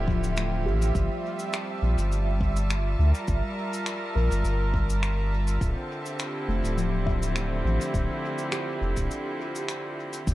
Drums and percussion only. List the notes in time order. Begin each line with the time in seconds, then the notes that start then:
0.08 kick
0.24 cabasa
0.37 finger snap, cabasa
0.82 cabasa
0.95 kick, cabasa
1.39 cabasa
1.53 finger snap, cabasa
1.98 cabasa
2.12 cabasa
2.41 kick
2.56 cabasa
2.70 finger snap, cabasa
3.15 cabasa
3.28 kick, cabasa
3.73 cabasa
3.86 finger snap, cabasa
4.32 cabasa
4.45 cabasa
4.74 kick
4.90 cabasa
5.03 finger snap, cabasa
5.47 cabasa
5.61 kick, cabasa
6.06 cabasa
6.19 finger snap, cabasa
6.65 cabasa
6.78 cabasa
7.07 kick
7.23 cabasa
7.36 finger snap, cabasa
7.81 cabasa
7.94 kick, cabasa
8.38 cabasa
8.52 finger snap, cabasa
8.97 kick, cabasa
9.11 cabasa
9.55 cabasa
9.69 finger snap, cabasa
10.13 cabasa
10.27 kick, cabasa